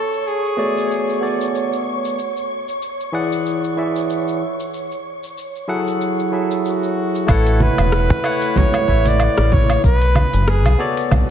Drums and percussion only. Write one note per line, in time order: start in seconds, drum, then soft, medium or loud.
0.13 cabasa medium
0.27 cabasa medium
0.45 cabasa soft
0.77 cabasa medium
0.91 cabasa medium
1.09 cabasa soft
1.41 cabasa medium
1.55 cabasa soft
1.73 cabasa soft
2.05 cabasa medium
2.19 cabasa soft
2.37 cabasa soft
2.68 cabasa medium
2.82 cabasa medium
3.00 cabasa soft
3.32 cabasa medium
3.46 cabasa medium
3.64 cabasa soft
3.96 cabasa medium
4.10 cabasa soft
4.28 cabasa soft
4.60 cabasa medium
4.74 cabasa soft
4.92 cabasa soft
5.24 cabasa medium
5.38 cabasa medium
5.56 cabasa soft
5.87 cabasa medium
6.01 cabasa medium
6.19 cabasa soft
6.51 cabasa medium
6.65 cabasa medium
6.83 cabasa soft
7.15 cabasa medium
7.28 kick loud
7.28 cabasa medium
7.28 low woodblock medium
7.47 closed hi-hat soft
7.47 cabasa soft
7.60 high conga medium
7.78 closed hi-hat medium
7.78 cabasa medium
7.78 low woodblock medium
7.92 cross-stick medium
7.92 cabasa medium
8.10 closed hi-hat soft
8.10 high conga medium
8.10 cabasa soft
8.24 low woodblock medium
8.42 closed hi-hat medium
8.42 cabasa medium
8.56 kick loud
8.56 high conga medium
8.56 low conga loud
8.56 cabasa medium
8.74 closed hi-hat soft
8.74 cabasa soft
8.74 low woodblock medium
8.88 kick medium
9.05 closed hi-hat medium
9.05 high conga medium
9.05 cabasa medium
9.20 cabasa medium
9.20 low woodblock medium
9.38 cross-stick medium
9.38 closed hi-hat soft
9.38 cabasa soft
9.52 kick loud
9.52 high conga loud
9.70 closed hi-hat medium
9.70 cabasa medium
9.70 low woodblock medium
9.84 kick loud
9.84 cabasa medium
10.02 closed hi-hat soft
10.02 cabasa soft
10.15 high conga loud
10.15 low woodblock medium
10.33 closed hi-hat medium
10.33 cabasa medium
10.48 cross-stick medium
10.48 cabasa medium
10.65 closed hi-hat soft
10.65 high conga medium
10.65 cabasa soft
10.65 low woodblock medium
10.97 closed hi-hat medium
10.97 cabasa medium
11.11 kick loud
11.11 high conga loud
11.11 low conga medium
11.11 cabasa medium
11.11 low woodblock medium